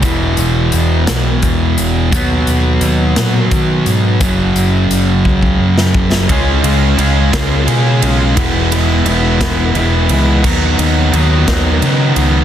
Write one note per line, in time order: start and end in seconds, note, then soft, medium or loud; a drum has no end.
0.02 0.35 E1 loud
0.02 2.10 E2 medium
0.02 2.10 B2 loud
0.02 2.12 E3 loud
0.02 kick loud
0.02 closed hi-hat medium
0.37 0.70 E1 medium
0.37 closed hi-hat medium
0.72 1.05 E1 medium
0.72 closed hi-hat medium
1.07 1.40 B1 medium
1.07 snare loud
1.07 closed hi-hat loud
1.42 1.75 E2 medium
1.42 kick medium
1.42 closed hi-hat medium
1.77 2.09 E1 medium
1.77 closed hi-hat medium
2.11 2.44 D#2 loud
2.11 4.19 B2 medium
2.11 4.20 F#3 loud
2.11 kick loud
2.11 closed hi-hat loud
2.15 4.21 B3 loud
2.46 2.79 D#2 loud
2.46 closed hi-hat medium
2.81 3.13 D#2 medium
2.81 closed hi-hat medium
3.16 3.48 A#2 medium
3.16 snare loud
3.16 closed hi-hat loud
3.51 3.83 D#3 medium
3.51 kick medium
3.51 closed hi-hat medium
3.86 4.18 G#2 loud
3.86 closed hi-hat medium
4.21 4.53 F#1 medium
4.21 6.27 F#2 loud
4.21 6.28 C#3 loud
4.21 6.29 F#3 loud
4.21 kick loud
4.21 closed hi-hat medium
4.55 4.87 F#1 medium
4.55 closed hi-hat medium
4.90 5.22 F#1 medium
4.90 closed hi-hat medium
5.25 5.57 C#2 medium
5.25 kick medium
5.43 kick medium
5.59 5.91 F#2 medium
5.78 snare medium
5.94 6.26 F#1 loud
5.94 kick medium
6.12 snare medium
6.29 6.61 C#2 medium
6.29 6.97 C#3 loud
6.29 6.66 G#3 loud
6.29 6.64 C#4 loud
6.29 6.62 F4 loud
6.29 kick loud
6.29 ride loud
6.63 6.96 C#2 medium
6.63 6.99 G#3 medium
6.63 6.99 C#4 medium
6.63 7.00 F4 medium
6.63 ride medium
6.98 7.30 C#2 medium
6.98 7.65 C#3 medium
6.98 7.35 G#3 medium
6.98 7.33 C#4 medium
6.98 7.32 F4 medium
6.98 ride medium
7.33 7.65 C#2 loud
7.33 7.66 G#3 medium
7.33 7.67 C#4 medium
7.33 7.69 F4 medium
7.33 kick medium
7.33 snare loud
7.33 ride loud
7.66 7.99 B2 medium
7.66 8.34 C#3 medium
7.66 8.04 G#3 medium
7.66 8.02 C#4 loud
7.66 8.00 F4 medium
7.66 ride medium
8.02 8.34 B1 medium
8.02 8.36 G#3 medium
8.02 8.36 C#4 medium
8.02 8.35 F4 medium
8.02 ride medium
8.36 9.02 E1 loud
8.36 9.05 E3 loud
8.36 8.74 G#3 loud
8.36 8.73 B3 loud
8.36 8.70 E4 loud
8.36 kick loud
8.36 ride loud
8.72 9.06 G#3 medium
8.72 9.08 B3 medium
8.72 9.08 E4 medium
8.72 ride medium
9.05 9.71 E1 medium
9.05 9.74 E3 medium
9.05 9.43 G#3 medium
9.05 9.41 B3 medium
9.05 ride loud
9.09 9.40 E4 medium
9.41 9.75 G#3 medium
9.41 9.76 B3 medium
9.41 9.78 E4 medium
9.41 kick medium
9.41 snare loud
9.41 ride medium
9.75 10.07 E1 medium
9.75 10.42 E3 medium
9.75 10.12 G#3 medium
9.75 10.11 B3 medium
9.75 10.09 E4 medium
9.75 ride medium
10.09 10.41 C#2 loud
10.09 10.43 B3 medium
10.09 10.42 E4 medium
10.09 ride medium
10.13 10.44 G#3 medium
10.44 10.76 D#2 loud
10.44 11.12 D#3 medium
10.44 10.82 F#3 loud
10.44 10.79 B3 loud
10.44 10.78 D#4 loud
10.44 kick loud
10.44 crash medium
10.78 11.10 D#2 loud
10.78 11.14 B3 medium
10.78 11.15 D#4 medium
10.78 ride medium
10.82 11.14 F#3 medium
11.13 11.45 D#2 medium
11.13 11.81 D#3 medium
11.13 11.49 F#3 medium
11.13 11.48 B3 medium
11.13 11.46 D#4 medium
11.13 ride medium
11.47 11.79 D#2 loud
11.47 11.83 F#3 medium
11.47 11.84 B3 medium
11.47 11.85 D#4 medium
11.47 kick medium
11.47 snare loud
11.47 ride medium
11.82 12.13 C#3 medium
11.82 12.44 D#3 medium
11.82 12.19 F#3 medium
11.82 12.18 B3 loud
11.82 ride medium
11.86 12.16 D#4 loud
12.16 12.44 C#2 loud
12.16 12.44 F#3 medium
12.16 12.44 B3 medium
12.16 12.44 D#4 medium
12.16 ride medium